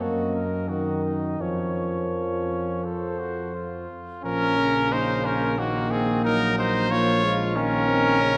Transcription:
0.00 F#2 A#3 F#4 A#4 D#5
0.35 A#4
0.69 D#3 F#4 A#4 D#5
1.05 D#4
1.40 F2 F3 C#4 A#4 C#5
2.14 C#4
2.84 A4 C5
3.19 F#4
3.54 F4
4.23 A#1 F3 C#4 A#4
4.58 C#3
4.92 A#3 D#4 C5
5.25 C#4 A#4
5.57 D#3 A#3 F#4
5.90 C4 G#4
6.23 F#3 D#4 A#4
6.57 D#4 C5
6.90 F3 A#3 F4 C#5
7.23 G#3
7.55 D#3 A#3 C#4 A#4
7.88 C4
8.20 C#3 C#4

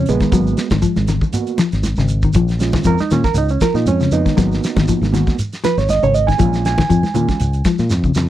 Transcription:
Already playing: C#3
0.06 A#1 G#3 B3, closed hi-hat, shekere
0.20 D#3, kick, snare, closed hi-hat, high conga, shekere
0.31 G#1 F#3 A#3 B3 F#4, kick, closed hi-hat, high conga, low conga, shekere
0.47 shekere
0.57 snare, closed hi-hat, shekere
0.70 G#1 D#3, kick, snare, closed hi-hat, high conga, shekere
0.82 F3, kick, closed hi-hat, high conga, shekere
0.96 G#1, snare, high conga, shekere
1.07 D#3, snare, closed hi-hat, low conga, shekere
1.21 kick, low conga, shekere
1.33 A#3 B3 F#4, closed hi-hat, high conga, shekere
1.47 closed hi-hat, shekere
1.58 F3, snare, closed hi-hat, high conga, shekere
1.72 G#1, snare, closed hi-hat, shekere
1.83 snare, closed hi-hat, high conga, shekere
1.96 G#1 C#3, snare, shekere
2.08 closed hi-hat, shekere
2.22 D#3, kick, closed hi-hat, shekere
2.33 A#1 F3, kick, closed hi-hat, high conga, low conga, shekere
2.48 snare, closed hi-hat, shekere
2.59 G#3 C#4 F4, snare, closed hi-hat, shekere
2.73 D#3, kick, snare, high conga, shekere
2.84 F2 F3 A#4, kick, closed hi-hat, high conga, shekere
2.98 D#4, snare, high conga, shekere
3.11 A#2 D#3 C#4, snare, closed hi-hat, low conga, shekere
3.24 A#4, muted fingered electric bass stroke, kick, snare, closed hi-hat, low conga, shekere
3.34 C#2 D#4, closed hi-hat, high conga, shekere
3.49 C#4, closed hi-hat, shekere
3.61 F3 A#4, kick, snare, closed hi-hat, high conga, shekere
3.74 A#2 D#4, snare, shekere
3.86 F2 C#4, closed hi-hat, high conga, shekere
4.01 C#3, snare, closed hi-hat, shekere
4.12 F2 B3 D#4, closed hi-hat, shekere
4.26 D#3, kick, snare, closed hi-hat, high conga, shekere
4.36 G#1 F#3 A#3 B3 F#4, kick, snare, closed hi-hat, high conga, low conga, shekere
4.52 snare, shekere
4.63 snare, closed hi-hat, shekere
4.76 G#1 D#3, kick, snare, closed hi-hat, high conga, shekere
4.88 F3, kick, closed hi-hat, high conga, shekere
5.01 G#1, snare, high conga, shekere
5.12 D#3 A#3 B3 F#4, snare, closed hi-hat, high conga, low conga, shekere
5.27 kick, snare, low conga, shekere
5.39 closed hi-hat, high conga, shekere
5.53 snare, closed hi-hat, shekere
5.64 F3 B4, snare, closed hi-hat, high conga, shekere
5.77 G#1 C#5, snare, closed hi-hat, shekere
5.89 D#5, snare, closed hi-hat, high conga, shekere
6.03 G#1 C#3 C#5, shekere
6.14 D#5, closed hi-hat, shekere
6.27 D#3 G#5, kick, snare, closed hi-hat, shekere
6.38 A#1 F3 G#3 C#4 F4, kick, closed hi-hat, high conga, low conga, shekere
6.53 snare, closed hi-hat, shekere
6.65 G#5, snare, closed hi-hat, shekere
6.78 D#3, kick, snare, high conga, shekere
6.90 F2 F3, kick, closed hi-hat, shekere
7.03 snare, high conga, shekere
7.14 A#2 D#3 G#3 C#4 F4, closed hi-hat, high conga, low conga, shekere
7.28 muted fingered electric bass stroke, kick, snare, closed hi-hat, low conga, shekere
7.40 C#2, closed hi-hat, high conga, shekere
7.53 closed hi-hat, shekere
7.64 F3, kick, snare, closed hi-hat, high conga, shekere
7.78 A#2, snare, shekere
7.90 F2, snare, high conga, shekere
8.04 C#3, kick, shekere
8.14 F2, snare, low conga, shekere

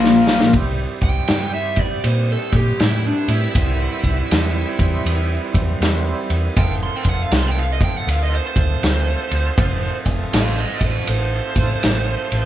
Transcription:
Already playing: A#1 A#2 F3 A#3 F4 A#4
0.04 snare
0.27 snare
0.40 snare
0.54 C2 G3 C4 E4 G4, kick, ride
1.01 C2 G5, kick, ride
1.28 G2, snare, ride
1.54 E5
1.76 D5, kick, ride
2.04 A#2 C5, ride
2.32 A4
2.52 A#2 G4, kick, ride
2.80 A2 E4, snare, ride
3.06 D4
3.28 A2 E4, ride
3.55 C2 G3 C4 E4, kick, ride
4.04 C2, kick, ride
4.31 E2, snare, ride
4.79 E2, kick, ride
5.05 E2, ride
5.54 E2, kick, ride
5.81 E2, snare, ride
6.30 E2, ride
6.57 F1 A3 C4 F4 A4 G5, kick, ride
6.83 C6
6.96 G5
7.05 F1, kick, ride
7.09 F#5
7.22 F5
7.32 C2, snare, ride
7.36 C6
7.47 G5
7.59 F5
7.72 D#5
7.81 G5, kick, ride
7.97 F#5
8.07 D2 F5, ride
8.23 D#5
8.35 C5
8.47 C5
8.56 D2, kick, ride
8.83 D2, snare, ride
9.31 D2, ride
9.58 F1 A3 C4 F4 A4, kick, ride
10.06 F1, kick, ride
10.33 A1 A4 F5, snare, ride
10.58 C5 D#5
10.81 A1 A4 C5, kick, ride
11.07 A1 C5, ride
11.56 A1, kick, ride
11.83 A1, snare, ride
12.32 A1, ride

